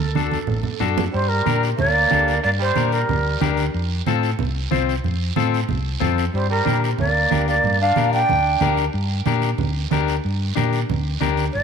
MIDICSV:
0, 0, Header, 1, 6, 480
1, 0, Start_track
1, 0, Key_signature, -2, "minor"
1, 0, Tempo, 325203
1, 1680, Time_signature, 4, 2, 24, 8
1, 17170, End_track
2, 0, Start_track
2, 0, Title_t, "Shakuhachi"
2, 0, Program_c, 0, 77
2, 0, Note_on_c, 0, 69, 79
2, 1202, Note_off_c, 0, 69, 0
2, 1664, Note_on_c, 0, 72, 96
2, 1893, Note_on_c, 0, 70, 86
2, 1915, Note_off_c, 0, 72, 0
2, 2386, Note_off_c, 0, 70, 0
2, 2630, Note_on_c, 0, 74, 102
2, 3535, Note_off_c, 0, 74, 0
2, 3596, Note_on_c, 0, 74, 106
2, 3685, Note_off_c, 0, 74, 0
2, 3855, Note_on_c, 0, 72, 94
2, 4329, Note_on_c, 0, 70, 85
2, 4351, Note_off_c, 0, 72, 0
2, 5283, Note_off_c, 0, 70, 0
2, 9356, Note_on_c, 0, 72, 82
2, 9580, Note_off_c, 0, 72, 0
2, 9602, Note_on_c, 0, 70, 76
2, 10047, Note_off_c, 0, 70, 0
2, 10319, Note_on_c, 0, 74, 89
2, 10988, Note_off_c, 0, 74, 0
2, 11047, Note_on_c, 0, 74, 94
2, 11489, Note_off_c, 0, 74, 0
2, 11535, Note_on_c, 0, 77, 103
2, 11973, Note_off_c, 0, 77, 0
2, 12006, Note_on_c, 0, 79, 104
2, 12903, Note_off_c, 0, 79, 0
2, 17014, Note_on_c, 0, 74, 102
2, 17170, Note_off_c, 0, 74, 0
2, 17170, End_track
3, 0, Start_track
3, 0, Title_t, "Clean electric guitar"
3, 0, Program_c, 1, 27
3, 230, Note_on_c, 1, 62, 68
3, 234, Note_on_c, 1, 66, 52
3, 235, Note_on_c, 1, 69, 74
3, 570, Note_off_c, 1, 66, 0
3, 571, Note_off_c, 1, 62, 0
3, 573, Note_off_c, 1, 69, 0
3, 1181, Note_on_c, 1, 62, 78
3, 1188, Note_on_c, 1, 66, 70
3, 1191, Note_on_c, 1, 69, 88
3, 1527, Note_off_c, 1, 62, 0
3, 1527, Note_off_c, 1, 66, 0
3, 1531, Note_off_c, 1, 69, 0
3, 2149, Note_on_c, 1, 62, 71
3, 2162, Note_on_c, 1, 70, 81
3, 2163, Note_on_c, 1, 67, 61
3, 2492, Note_off_c, 1, 62, 0
3, 2494, Note_off_c, 1, 67, 0
3, 2496, Note_off_c, 1, 70, 0
3, 3106, Note_on_c, 1, 62, 72
3, 3111, Note_on_c, 1, 67, 68
3, 3125, Note_on_c, 1, 69, 72
3, 3448, Note_off_c, 1, 62, 0
3, 3452, Note_off_c, 1, 67, 0
3, 3455, Note_off_c, 1, 69, 0
3, 4071, Note_on_c, 1, 62, 72
3, 4078, Note_on_c, 1, 67, 56
3, 4083, Note_on_c, 1, 70, 88
3, 4411, Note_off_c, 1, 67, 0
3, 4412, Note_off_c, 1, 62, 0
3, 4417, Note_off_c, 1, 70, 0
3, 5033, Note_on_c, 1, 62, 91
3, 5040, Note_on_c, 1, 67, 88
3, 5053, Note_on_c, 1, 70, 82
3, 5371, Note_off_c, 1, 62, 0
3, 5376, Note_off_c, 1, 67, 0
3, 5379, Note_off_c, 1, 70, 0
3, 6004, Note_on_c, 1, 60, 78
3, 6014, Note_on_c, 1, 69, 89
3, 6015, Note_on_c, 1, 65, 71
3, 6338, Note_off_c, 1, 60, 0
3, 6340, Note_off_c, 1, 65, 0
3, 6342, Note_off_c, 1, 69, 0
3, 6950, Note_on_c, 1, 60, 87
3, 6957, Note_on_c, 1, 65, 80
3, 6970, Note_on_c, 1, 72, 90
3, 7290, Note_off_c, 1, 60, 0
3, 7293, Note_off_c, 1, 65, 0
3, 7300, Note_off_c, 1, 72, 0
3, 7914, Note_on_c, 1, 60, 90
3, 7920, Note_on_c, 1, 65, 76
3, 7926, Note_on_c, 1, 69, 92
3, 8252, Note_off_c, 1, 60, 0
3, 8255, Note_off_c, 1, 65, 0
3, 8258, Note_off_c, 1, 69, 0
3, 8859, Note_on_c, 1, 60, 92
3, 8863, Note_on_c, 1, 65, 75
3, 8875, Note_on_c, 1, 69, 82
3, 9204, Note_off_c, 1, 60, 0
3, 9208, Note_off_c, 1, 65, 0
3, 9210, Note_off_c, 1, 69, 0
3, 9818, Note_on_c, 1, 62, 72
3, 9831, Note_on_c, 1, 67, 68
3, 9840, Note_on_c, 1, 70, 84
3, 10164, Note_off_c, 1, 62, 0
3, 10171, Note_off_c, 1, 67, 0
3, 10175, Note_off_c, 1, 70, 0
3, 10787, Note_on_c, 1, 62, 79
3, 10797, Note_on_c, 1, 67, 60
3, 10801, Note_on_c, 1, 70, 83
3, 11130, Note_off_c, 1, 62, 0
3, 11131, Note_off_c, 1, 67, 0
3, 11136, Note_off_c, 1, 70, 0
3, 11751, Note_on_c, 1, 62, 74
3, 11756, Note_on_c, 1, 67, 60
3, 11766, Note_on_c, 1, 70, 82
3, 12091, Note_off_c, 1, 62, 0
3, 12092, Note_off_c, 1, 67, 0
3, 12098, Note_off_c, 1, 70, 0
3, 12707, Note_on_c, 1, 62, 94
3, 12716, Note_on_c, 1, 67, 80
3, 12723, Note_on_c, 1, 70, 105
3, 13049, Note_off_c, 1, 62, 0
3, 13050, Note_off_c, 1, 67, 0
3, 13056, Note_off_c, 1, 70, 0
3, 13671, Note_on_c, 1, 62, 93
3, 13678, Note_on_c, 1, 67, 80
3, 13684, Note_on_c, 1, 70, 94
3, 14010, Note_off_c, 1, 62, 0
3, 14014, Note_off_c, 1, 70, 0
3, 14015, Note_off_c, 1, 67, 0
3, 14636, Note_on_c, 1, 62, 93
3, 14650, Note_on_c, 1, 67, 78
3, 14652, Note_on_c, 1, 70, 96
3, 14973, Note_off_c, 1, 62, 0
3, 14976, Note_off_c, 1, 67, 0
3, 14980, Note_off_c, 1, 70, 0
3, 15578, Note_on_c, 1, 62, 87
3, 15589, Note_on_c, 1, 67, 78
3, 15600, Note_on_c, 1, 70, 77
3, 15923, Note_off_c, 1, 62, 0
3, 15930, Note_off_c, 1, 67, 0
3, 15931, Note_off_c, 1, 70, 0
3, 16538, Note_on_c, 1, 62, 84
3, 16553, Note_on_c, 1, 67, 76
3, 16553, Note_on_c, 1, 70, 101
3, 16885, Note_off_c, 1, 62, 0
3, 16887, Note_off_c, 1, 67, 0
3, 16890, Note_off_c, 1, 70, 0
3, 17170, End_track
4, 0, Start_track
4, 0, Title_t, "Trombone"
4, 0, Program_c, 2, 57
4, 1661, Note_on_c, 2, 55, 85
4, 1928, Note_off_c, 2, 55, 0
4, 1928, Note_on_c, 2, 55, 77
4, 2403, Note_off_c, 2, 55, 0
4, 2618, Note_on_c, 2, 58, 93
4, 3529, Note_off_c, 2, 58, 0
4, 3593, Note_on_c, 2, 58, 90
4, 3702, Note_off_c, 2, 58, 0
4, 3825, Note_on_c, 2, 55, 79
4, 4316, Note_off_c, 2, 55, 0
4, 4316, Note_on_c, 2, 55, 67
4, 5277, Note_off_c, 2, 55, 0
4, 9361, Note_on_c, 2, 55, 77
4, 9583, Note_off_c, 2, 55, 0
4, 9597, Note_on_c, 2, 55, 74
4, 10044, Note_off_c, 2, 55, 0
4, 10326, Note_on_c, 2, 58, 79
4, 10992, Note_off_c, 2, 58, 0
4, 11037, Note_on_c, 2, 58, 83
4, 11484, Note_off_c, 2, 58, 0
4, 11534, Note_on_c, 2, 62, 88
4, 11973, Note_off_c, 2, 62, 0
4, 12007, Note_on_c, 2, 62, 89
4, 12903, Note_off_c, 2, 62, 0
4, 17170, End_track
5, 0, Start_track
5, 0, Title_t, "Fingered electric bass"
5, 0, Program_c, 3, 33
5, 0, Note_on_c, 3, 38, 86
5, 523, Note_off_c, 3, 38, 0
5, 723, Note_on_c, 3, 33, 80
5, 913, Note_off_c, 3, 33, 0
5, 1193, Note_on_c, 3, 42, 88
5, 1580, Note_off_c, 3, 42, 0
5, 1687, Note_on_c, 3, 43, 93
5, 2068, Note_off_c, 3, 43, 0
5, 2162, Note_on_c, 3, 46, 82
5, 2545, Note_off_c, 3, 46, 0
5, 2629, Note_on_c, 3, 38, 94
5, 3017, Note_off_c, 3, 38, 0
5, 3129, Note_on_c, 3, 38, 100
5, 3509, Note_off_c, 3, 38, 0
5, 3611, Note_on_c, 3, 43, 95
5, 3990, Note_off_c, 3, 43, 0
5, 4090, Note_on_c, 3, 46, 87
5, 4469, Note_off_c, 3, 46, 0
5, 4568, Note_on_c, 3, 38, 91
5, 4948, Note_off_c, 3, 38, 0
5, 5039, Note_on_c, 3, 38, 106
5, 5423, Note_off_c, 3, 38, 0
5, 5524, Note_on_c, 3, 41, 100
5, 5906, Note_off_c, 3, 41, 0
5, 6016, Note_on_c, 3, 45, 94
5, 6393, Note_off_c, 3, 45, 0
5, 6494, Note_on_c, 3, 36, 89
5, 6871, Note_off_c, 3, 36, 0
5, 6978, Note_on_c, 3, 36, 96
5, 7354, Note_off_c, 3, 36, 0
5, 7447, Note_on_c, 3, 41, 96
5, 7827, Note_off_c, 3, 41, 0
5, 7930, Note_on_c, 3, 45, 85
5, 8309, Note_off_c, 3, 45, 0
5, 8406, Note_on_c, 3, 36, 95
5, 8787, Note_off_c, 3, 36, 0
5, 8884, Note_on_c, 3, 41, 95
5, 9266, Note_off_c, 3, 41, 0
5, 9356, Note_on_c, 3, 43, 97
5, 9741, Note_off_c, 3, 43, 0
5, 9854, Note_on_c, 3, 46, 90
5, 10232, Note_off_c, 3, 46, 0
5, 10320, Note_on_c, 3, 38, 93
5, 10704, Note_off_c, 3, 38, 0
5, 10813, Note_on_c, 3, 38, 105
5, 11191, Note_off_c, 3, 38, 0
5, 11287, Note_on_c, 3, 43, 99
5, 11668, Note_off_c, 3, 43, 0
5, 11766, Note_on_c, 3, 46, 81
5, 12147, Note_off_c, 3, 46, 0
5, 12236, Note_on_c, 3, 38, 96
5, 12621, Note_off_c, 3, 38, 0
5, 12707, Note_on_c, 3, 38, 93
5, 13095, Note_off_c, 3, 38, 0
5, 13194, Note_on_c, 3, 43, 92
5, 13579, Note_off_c, 3, 43, 0
5, 13671, Note_on_c, 3, 46, 93
5, 14058, Note_off_c, 3, 46, 0
5, 14148, Note_on_c, 3, 38, 94
5, 14536, Note_off_c, 3, 38, 0
5, 14639, Note_on_c, 3, 38, 96
5, 15022, Note_off_c, 3, 38, 0
5, 15126, Note_on_c, 3, 43, 94
5, 15506, Note_off_c, 3, 43, 0
5, 15610, Note_on_c, 3, 46, 88
5, 15988, Note_off_c, 3, 46, 0
5, 16089, Note_on_c, 3, 38, 95
5, 16468, Note_off_c, 3, 38, 0
5, 16571, Note_on_c, 3, 38, 96
5, 16949, Note_off_c, 3, 38, 0
5, 17045, Note_on_c, 3, 31, 91
5, 17170, Note_off_c, 3, 31, 0
5, 17170, End_track
6, 0, Start_track
6, 0, Title_t, "Drums"
6, 0, Note_on_c, 9, 63, 62
6, 144, Note_off_c, 9, 63, 0
6, 225, Note_on_c, 9, 63, 86
6, 256, Note_on_c, 9, 73, 65
6, 373, Note_off_c, 9, 63, 0
6, 404, Note_off_c, 9, 73, 0
6, 465, Note_on_c, 9, 63, 83
6, 493, Note_on_c, 9, 73, 60
6, 613, Note_off_c, 9, 63, 0
6, 640, Note_off_c, 9, 73, 0
6, 696, Note_on_c, 9, 64, 89
6, 734, Note_on_c, 9, 74, 67
6, 843, Note_off_c, 9, 64, 0
6, 882, Note_off_c, 9, 74, 0
6, 933, Note_on_c, 9, 64, 74
6, 1081, Note_off_c, 9, 64, 0
6, 1183, Note_on_c, 9, 64, 78
6, 1199, Note_on_c, 9, 73, 64
6, 1331, Note_off_c, 9, 64, 0
6, 1346, Note_off_c, 9, 73, 0
6, 1441, Note_on_c, 9, 64, 96
6, 1443, Note_on_c, 9, 73, 68
6, 1588, Note_off_c, 9, 64, 0
6, 1591, Note_off_c, 9, 73, 0
6, 1686, Note_on_c, 9, 74, 71
6, 1834, Note_off_c, 9, 74, 0
6, 2158, Note_on_c, 9, 63, 85
6, 2168, Note_on_c, 9, 73, 73
6, 2306, Note_off_c, 9, 63, 0
6, 2315, Note_off_c, 9, 73, 0
6, 2408, Note_on_c, 9, 73, 68
6, 2555, Note_off_c, 9, 73, 0
6, 2636, Note_on_c, 9, 64, 91
6, 2652, Note_on_c, 9, 74, 79
6, 2783, Note_off_c, 9, 64, 0
6, 2800, Note_off_c, 9, 74, 0
6, 3118, Note_on_c, 9, 63, 84
6, 3132, Note_on_c, 9, 73, 67
6, 3265, Note_off_c, 9, 63, 0
6, 3279, Note_off_c, 9, 73, 0
6, 3366, Note_on_c, 9, 73, 69
6, 3514, Note_off_c, 9, 73, 0
6, 3602, Note_on_c, 9, 74, 75
6, 3749, Note_off_c, 9, 74, 0
6, 4067, Note_on_c, 9, 63, 78
6, 4076, Note_on_c, 9, 73, 70
6, 4215, Note_off_c, 9, 63, 0
6, 4223, Note_off_c, 9, 73, 0
6, 4315, Note_on_c, 9, 73, 67
6, 4463, Note_off_c, 9, 73, 0
6, 4563, Note_on_c, 9, 74, 75
6, 4564, Note_on_c, 9, 64, 83
6, 4710, Note_off_c, 9, 74, 0
6, 4712, Note_off_c, 9, 64, 0
6, 5038, Note_on_c, 9, 63, 92
6, 5046, Note_on_c, 9, 73, 69
6, 5185, Note_off_c, 9, 63, 0
6, 5194, Note_off_c, 9, 73, 0
6, 5272, Note_on_c, 9, 73, 73
6, 5420, Note_off_c, 9, 73, 0
6, 5526, Note_on_c, 9, 74, 67
6, 5673, Note_off_c, 9, 74, 0
6, 5999, Note_on_c, 9, 63, 81
6, 6003, Note_on_c, 9, 73, 65
6, 6147, Note_off_c, 9, 63, 0
6, 6150, Note_off_c, 9, 73, 0
6, 6249, Note_on_c, 9, 73, 66
6, 6396, Note_off_c, 9, 73, 0
6, 6475, Note_on_c, 9, 64, 87
6, 6494, Note_on_c, 9, 74, 67
6, 6623, Note_off_c, 9, 64, 0
6, 6641, Note_off_c, 9, 74, 0
6, 6961, Note_on_c, 9, 63, 85
6, 6981, Note_on_c, 9, 73, 70
6, 7108, Note_off_c, 9, 63, 0
6, 7129, Note_off_c, 9, 73, 0
6, 7221, Note_on_c, 9, 73, 68
6, 7369, Note_off_c, 9, 73, 0
6, 7443, Note_on_c, 9, 64, 65
6, 7468, Note_on_c, 9, 74, 73
6, 7591, Note_off_c, 9, 64, 0
6, 7616, Note_off_c, 9, 74, 0
6, 7913, Note_on_c, 9, 63, 88
6, 7947, Note_on_c, 9, 73, 72
6, 8061, Note_off_c, 9, 63, 0
6, 8095, Note_off_c, 9, 73, 0
6, 8182, Note_on_c, 9, 73, 69
6, 8329, Note_off_c, 9, 73, 0
6, 8394, Note_on_c, 9, 64, 86
6, 8424, Note_on_c, 9, 74, 78
6, 8541, Note_off_c, 9, 64, 0
6, 8571, Note_off_c, 9, 74, 0
6, 8877, Note_on_c, 9, 63, 86
6, 8877, Note_on_c, 9, 64, 75
6, 8898, Note_on_c, 9, 73, 64
6, 9025, Note_off_c, 9, 63, 0
6, 9025, Note_off_c, 9, 64, 0
6, 9045, Note_off_c, 9, 73, 0
6, 9124, Note_on_c, 9, 73, 71
6, 9271, Note_off_c, 9, 73, 0
6, 9372, Note_on_c, 9, 74, 70
6, 9519, Note_off_c, 9, 74, 0
6, 9830, Note_on_c, 9, 63, 80
6, 9851, Note_on_c, 9, 73, 77
6, 9978, Note_off_c, 9, 63, 0
6, 9998, Note_off_c, 9, 73, 0
6, 10096, Note_on_c, 9, 73, 69
6, 10243, Note_off_c, 9, 73, 0
6, 10309, Note_on_c, 9, 64, 85
6, 10312, Note_on_c, 9, 74, 71
6, 10457, Note_off_c, 9, 64, 0
6, 10460, Note_off_c, 9, 74, 0
6, 10796, Note_on_c, 9, 63, 85
6, 10809, Note_on_c, 9, 73, 77
6, 10944, Note_off_c, 9, 63, 0
6, 10957, Note_off_c, 9, 73, 0
6, 11041, Note_on_c, 9, 73, 74
6, 11188, Note_off_c, 9, 73, 0
6, 11274, Note_on_c, 9, 64, 68
6, 11289, Note_on_c, 9, 74, 72
6, 11422, Note_off_c, 9, 64, 0
6, 11436, Note_off_c, 9, 74, 0
6, 11749, Note_on_c, 9, 63, 89
6, 11765, Note_on_c, 9, 73, 72
6, 11897, Note_off_c, 9, 63, 0
6, 11912, Note_off_c, 9, 73, 0
6, 11999, Note_on_c, 9, 73, 70
6, 12146, Note_off_c, 9, 73, 0
6, 12233, Note_on_c, 9, 74, 75
6, 12244, Note_on_c, 9, 64, 81
6, 12381, Note_off_c, 9, 74, 0
6, 12392, Note_off_c, 9, 64, 0
6, 12701, Note_on_c, 9, 73, 71
6, 12708, Note_on_c, 9, 63, 86
6, 12708, Note_on_c, 9, 64, 77
6, 12848, Note_off_c, 9, 73, 0
6, 12855, Note_off_c, 9, 63, 0
6, 12855, Note_off_c, 9, 64, 0
6, 12950, Note_on_c, 9, 73, 68
6, 13097, Note_off_c, 9, 73, 0
6, 13181, Note_on_c, 9, 74, 74
6, 13328, Note_off_c, 9, 74, 0
6, 13662, Note_on_c, 9, 73, 72
6, 13663, Note_on_c, 9, 63, 89
6, 13809, Note_off_c, 9, 73, 0
6, 13810, Note_off_c, 9, 63, 0
6, 13903, Note_on_c, 9, 73, 70
6, 14050, Note_off_c, 9, 73, 0
6, 14143, Note_on_c, 9, 74, 76
6, 14146, Note_on_c, 9, 64, 88
6, 14291, Note_off_c, 9, 74, 0
6, 14294, Note_off_c, 9, 64, 0
6, 14629, Note_on_c, 9, 63, 90
6, 14631, Note_on_c, 9, 73, 69
6, 14777, Note_off_c, 9, 63, 0
6, 14779, Note_off_c, 9, 73, 0
6, 14878, Note_on_c, 9, 73, 73
6, 15025, Note_off_c, 9, 73, 0
6, 15110, Note_on_c, 9, 74, 76
6, 15257, Note_off_c, 9, 74, 0
6, 15594, Note_on_c, 9, 73, 75
6, 15598, Note_on_c, 9, 63, 92
6, 15742, Note_off_c, 9, 73, 0
6, 15746, Note_off_c, 9, 63, 0
6, 15834, Note_on_c, 9, 73, 69
6, 15982, Note_off_c, 9, 73, 0
6, 16080, Note_on_c, 9, 74, 73
6, 16083, Note_on_c, 9, 64, 88
6, 16227, Note_off_c, 9, 74, 0
6, 16230, Note_off_c, 9, 64, 0
6, 16550, Note_on_c, 9, 63, 89
6, 16560, Note_on_c, 9, 73, 72
6, 16697, Note_off_c, 9, 63, 0
6, 16708, Note_off_c, 9, 73, 0
6, 16788, Note_on_c, 9, 73, 75
6, 16935, Note_off_c, 9, 73, 0
6, 17020, Note_on_c, 9, 74, 70
6, 17167, Note_off_c, 9, 74, 0
6, 17170, End_track
0, 0, End_of_file